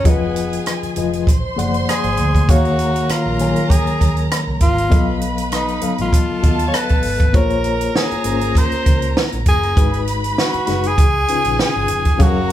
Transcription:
0.04 F1 F3 B3 F4 G#4 B4 D#5 G#5, kick, closed hi-hat
0.36 closed hi-hat
0.53 closed hi-hat
0.66 cross-stick, closed hi-hat
0.83 muted fingered electric bass stroke, closed hi-hat
0.96 F1 F3 F4 G#4 B4 D#5, closed hi-hat
1.13 closed hi-hat
1.27 A#1 C5 C6, kick, closed hi-hat
1.43 muted fingered electric bass stroke
1.56 F#1 F3 A#3 G#4 D5 F#5, closed hi-hat
1.74 closed hi-hat
1.89 G#4, cross-stick, closed hi-hat
2.04 G#1, closed hi-hat
2.17 D2, closed hi-hat
2.35 kick, closed hi-hat
2.48 D#2 D#3 A#3 F#4 G#4 A#4 C#5 F5 A#5, kick, closed hi-hat
2.65 closed hi-hat
2.79 closed hi-hat
2.96 closed hi-hat
3.09 F4, muted fingered electric bass stroke, cross-stick, closed hi-hat
3.26 A#1
3.39 D#3 F#3 A#3 G#4 C#5 G#5, cross-stick, closed hi-hat
3.56 closed hi-hat
3.70 G#4, kick, closed hi-hat
3.87 muted fingered electric bass stroke, closed hi-hat
4.01 D#2, kick, closed hi-hat
4.17 closed hi-hat
4.32 cross-stick, closed hi-hat
4.47 C2
4.60 G#1 F4, kick, closed hi-hat
4.78 closed hi-hat
4.90 B1 F#3 B3 A4 B4 D#5 F5 B5, kick, closed hi-hat
5.21 closed hi-hat
5.38 closed hi-hat
5.52 D#4, cross-stick, closed hi-hat
5.68 closed hi-hat
5.81 F#3 B3 A4 D#5 F5, muted fingered electric bass stroke, closed hi-hat
5.98 A1 F4, closed hi-hat
6.13 A4 A5, kick, closed hi-hat
6.30 muted fingered electric bass stroke
6.42 D#2 B3 F#4 A4 D#5 F5, kick, closed hi-hat
6.59 closed hi-hat
6.68 C#5
6.74 B4, cross-stick, closed hi-hat
6.89 B1, kick, closed hi-hat
7.02 G#1, open hi-hat
7.20 kick, closed hi-hat
7.33 A#1 A#3 F4 G#4 A#4 C5 C#5 A#5, kick, closed hi-hat
7.50 closed hi-hat
7.64 closed hi-hat
7.81 closed hi-hat
7.96 G#4, snare
8.11 muted fingered electric bass stroke, closed hi-hat
8.24 G#1 A#3 C#4 F4 G#4 C5, closed hi-hat
8.41 closed hi-hat
8.55 C5, kick, closed hi-hat
8.72 muted fingered electric bass stroke, closed hi-hat
8.86 C#2, kick, closed hi-hat
9.02 closed hi-hat
9.17 snare
9.32 A#1, closed hi-hat
9.46 F#1 G#4, kick, closed hi-hat
9.63 closed hi-hat
9.75 G#1 G#3 D#4 F#4 G#4 B4 B5, kick, closed hi-hat
9.94 closed hi-hat
10.07 closed hi-hat
10.24 closed hi-hat
10.38 F#4, snare
10.54 muted fingered electric bass stroke, closed hi-hat
10.67 F#1 G#3 D#4 F#4 G#4 B4, snare, closed hi-hat
10.83 G#4, closed hi-hat
10.98 C#2 G#4 G#5, kick, closed hi-hat
11.28 C#3 C#4 D#4 F4 B4, muted fingered electric bass stroke, closed hi-hat
11.44 A#1, closed hi-hat
11.59 G#4, snare
11.76 G#1
11.88 F1, closed hi-hat
12.05 kick, closed hi-hat
12.18 F#1 F#3 C#4 G#4 A4 A#4 F5 A#5, kick, closed hi-hat
12.22 F#4
12.27 A#4

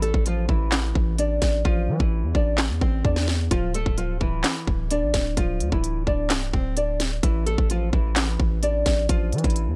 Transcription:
Already playing: A1
0.02 A3 A4, closed hi-hat
0.14 A1, kick
0.26 F3 F4, closed hi-hat
0.48 A1 E3 E4, kick
0.72 snare, clap, closed hi-hat
0.95 A1, kick
1.18 D4 D5, closed hi-hat
1.42 A1, kick, snare, closed hi-hat
1.65 A1 F3 F4, kick
1.88 E3
1.99 A1 E3 E4, kick
2.23 E2
2.35 A1 D4 D5, kick
2.58 snare, clap
2.70 E2
2.81 A1 C4 C5, kick
3.05 E2 D4 D5, kick
3.16 snare
3.28 snare
3.51 D1 F3 F4, kick, closed hi-hat
3.74 A3 A4, closed hi-hat
3.86 D1, kick
3.98 F3 F4, closed hi-hat
4.20 D1 E3 E4, kick
4.44 snare, clap, closed hi-hat
4.67 D1, kick
4.91 D4 D5, closed hi-hat
5.02 A1
5.14 D1, kick, snare, closed hi-hat
5.37 D1 F3 F4, kick, closed hi-hat
5.60 D2, closed hi-hat
5.72 D1 E3 E4, kick
5.84 closed hi-hat
6.07 D1 D4 D5, kick
6.30 C1, snare, clap, closed hi-hat
6.53 D1 C4 C5, kick
6.77 D4 D5, closed hi-hat
7.00 snare, closed hi-hat
7.23 A1 E3 E4, kick, closed hi-hat
7.46 A3 A4, closed hi-hat
7.58 A1, kick
7.70 F3 F4, closed hi-hat
7.93 A1 E3 E4, kick
8.16 snare, clap, closed hi-hat
8.40 A1, kick
8.63 D4 D5, closed hi-hat
8.86 A1, kick, snare, closed hi-hat
9.09 A1 F3 F4, kick, closed hi-hat
9.33 E3, closed hi-hat
9.38 closed hi-hat
9.44 A1 E3 E4, kick, closed hi-hat
9.50 closed hi-hat
9.56 closed hi-hat
9.67 E2

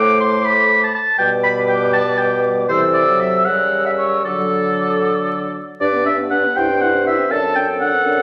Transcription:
Already playing: A2 A3 C5 D6
0.20 C6
0.45 B5
0.84 A5
0.95 A5
1.18 B2 G3 B4 G5 D6
1.44 B5
1.68 G5
1.93 A5
2.18 G5
2.69 C3 E3 A4 C5 E6
2.94 D5
3.07 F#3
3.20 E5
3.45 C#3 G3 A#4 F#5 E6
3.86 E5
3.98 C#5
4.24 D3 F#3 A4 D6
5.80 G2 D4 B4 D5
5.94 B3
6.05 D4 E5
6.19 B3
6.31 D4 F#5
6.44 B3
6.54 G2 E4 C5 G5
6.69 C4
6.81 E4 F#5
6.94 C4
7.05 E4 E5
7.19 C4
7.31 F#2 D4 A4 A5
7.44 C4
7.55 D4 G5
7.69 C4
7.79 D4 F#5
7.94 C4
8.05 F#2 D4
8.18 C4

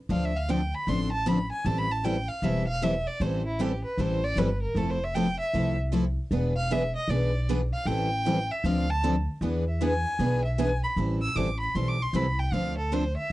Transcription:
0.09 D2 D3 F3 C4 D4 A4 F5
0.25 E5
0.37 F5
0.49 D3 F3 C4 D4 A4 G5
0.74 B5
0.87 A1 D3 F3 C4 D4 A4 C6
1.12 A5
1.26 D3 F3 C4 D4 A4 B5
1.52 G#5
1.65 A1 E3 G3 C4 E4 A4 A5
1.78 B5
1.91 A5
2.04 E3 G3 C4 E4 A4 G5
2.28 F5
2.42 E1 E3 G3 C4 E4 A4 E5
2.67 F5
2.82 E3 G3 C4 E4 A4 E5
3.07 D5
3.20 A1 E3 G3 C4 E4 A4 C5
3.46 E4
3.60 E3 G3 C4 E4 G4 A4
3.84 B4
3.98 A1 E3 G3 C4 E4 A4 C5
4.24 D5
4.36 G1 E3 G3 C4 E4 A4 B4
4.62 A#4
4.75 F1 F3 A3 C4 E4 A4
4.90 C5
5.03 E5
5.15 F3 A3 C4 E4 A4 G5
5.40 E5
5.54 C2 F3 A3 C4 E4 A4
5.92 F3 A3 C4 E4 A4
6.31 E1 E3 B3 D4 G#4 B4
6.56 F5
6.71 E3 B3 D4 G#4 B4 E5
6.96 D#5
7.08 B1 E3 B3 D4 G#4 B4 D5
7.49 E3 B3 D4 G#4 B4
7.73 F5
7.85 A1 E3 G3 C4 E4 A4 G5
8.25 E3 G3 C4 E4 A4
8.51 E5
8.64 D2 D3 F3 C4 D4 A4 F5
8.90 A5
9.03 D3 F3 C4 D4 A4
9.41 E2 E3 B3 D4 G#4 B4
9.68 E5
9.81 E3 B3 D4 G#4 B4 G#5
10.19 B1 E3 B3 D4 G#4 B4
10.45 E5
10.58 E3 B3 D4 G#4 B4 G#5
10.84 B5
10.96 A1 E3 G3 C4 E4 A4
11.22 E6
11.36 A1 E3 G3 C4 E4 A4 D6
11.60 B5
11.75 B1 E3 G3 C4 E4 A4 C6
11.88 D6
12.02 C6
12.13 C2 E3 G3 C4 E4 A4 B5
12.39 G5
12.52 D2 D3 F3 C4 D4 A4 F5
12.78 A4
12.92 D3 F3 C4 D4 A4 C5
13.17 E5

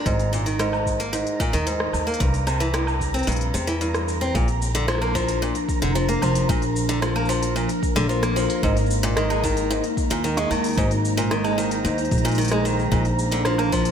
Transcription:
Already playing: A#5
0.06 G#1 G#2, kick, open hi-hat, shaker
0.19 open hi-hat, shaker
0.33 A#2, shaker
0.46 D#3, open hi-hat, shaker
0.59 G#2, cross-stick, open hi-hat, shaker
0.73 low woodblock, shaker
0.86 kick, shaker
1.00 A#3, open hi-hat, shaker
1.13 G#2, open hi-hat, shaker
1.27 open hi-hat
1.40 A#2, kick, shaker
1.53 D#2 D#3, open hi-hat, shaker
1.67 G#2, open hi-hat, shaker
1.80 cross-stick
1.93 D#2, low woodblock, shaker
2.07 A#3, shaker
2.14 open hi-hat
2.20 C2 G2, kick, open hi-hat, shaker
2.34 open hi-hat, shaker
2.47 C3, low woodblock, shaker
2.60 E3, open hi-hat, shaker
2.74 G2, cross-stick, open hi-hat, shaker
2.87 low woodblock, shaker
3.01 kick, shaker
3.14 C4, open hi-hat, shaker
3.19 open hi-hat
3.23 open hi-hat
3.27 A#1 G2, open hi-hat, shaker
3.32 open hi-hat
3.36 open hi-hat
3.41 open hi-hat
3.54 E2 C3, shaker
3.67 E3, open hi-hat, shaker
3.81 G2, open hi-hat, shaker
3.94 cross-stick, open hi-hat, shaker
4.08 shaker
4.21 C4, shaker
4.34 A#1 A#2 F3 A#3 D4 A#4 A#5, kick, shaker
4.48 open hi-hat, shaker
4.62 shaker
4.75 D3, open hi-hat, shaker
4.88 F3, cross-stick, shaker
4.92 cross-stick
4.95 cross-stick
4.98 A#3, cross-stick
5.02 cross-stick, low woodblock, shaker
5.05 cross-stick
5.08 cross-stick
5.12 F3, kick, cross-stick
5.16 shaker
5.28 open hi-hat, shaker
5.42 A#2, shaker
5.55 open hi-hat, shaker
5.69 kick, shaker
5.82 F1 D3, open hi-hat, shaker
5.95 F3, shaker
6.09 A#3, open hi-hat, shaker
6.22 F1 F3, low woodblock, shaker
6.35 open hi-hat, shaker
6.49 A#1 A#2, kick, shaker
6.62 open hi-hat, shaker
6.76 shaker
6.89 D3, open hi-hat, shaker
7.02 F3, cross-stick, shaker
7.16 A#3, low woodblock, shaker
7.25 F3, shaker
7.30 shaker
7.34 shaker
7.43 open hi-hat, shaker
7.56 A#2, shaker
7.69 open hi-hat, shaker
7.83 kick, shaker
7.96 A#1 D3, open hi-hat, shaker
8.09 F3, shaker
8.23 A#3, cross-stick, open hi-hat, shaker
8.36 F3, shaker
8.50 open hi-hat, shaker
8.63 G#1 G#2 G#3 D#4, kick, shaker
8.77 open hi-hat, shaker
8.86 shaker
8.91 shaker
9.03 A#2, open hi-hat, shaker
9.17 D#3, cross-stick, shaker
9.30 G#3, low woodblock, shaker
9.44 D#3, kick, shaker
9.57 open hi-hat, shaker
9.71 G#2, shaker
9.84 open hi-hat, shaker
9.97 kick, shaker
10.10 D#2 A#2, open hi-hat, shaker
10.24 D#3, shaker
10.37 G#3, cross-stick, open hi-hat, shaker
10.51 D#2 D#3, low woodblock, shaker
10.64 open hi-hat, shaker
10.66 open hi-hat
10.68 open hi-hat
10.71 open hi-hat
10.73 open hi-hat
10.75 G#1 G#2 C5, kick, open hi-hat, shaker
10.91 open hi-hat, shaker
11.05 shaker
11.17 A#2, open hi-hat, shaker
11.31 D#3, cross-stick, shaker
11.44 G#3, low woodblock, shaker
11.58 D#3, shaker
11.71 open hi-hat, shaker
11.84 D#2 G#2, shaker
11.98 open hi-hat, shaker
12.05 open hi-hat
12.11 A#1, kick, open hi-hat, shaker
12.18 open hi-hat
12.25 A#2, open hi-hat, shaker
12.28 open hi-hat
12.32 open hi-hat, shaker
12.35 D#3, open hi-hat
12.38 open hi-hat, shaker
12.41 open hi-hat
12.45 open hi-hat
12.48 G#3, cross-stick, open hi-hat
12.52 shaker
12.65 D#3, shaker
12.79 shaker
12.91 A#1 A#2 F3 A#3 D4 A#4, kick, shaker
13.05 open hi-hat, shaker
13.19 shaker
13.32 D3, open hi-hat, shaker
13.45 F3, cross-stick, shaker
13.58 A#3, low woodblock, shaker
13.72 F3, kick, shaker
13.85 open hi-hat, shaker

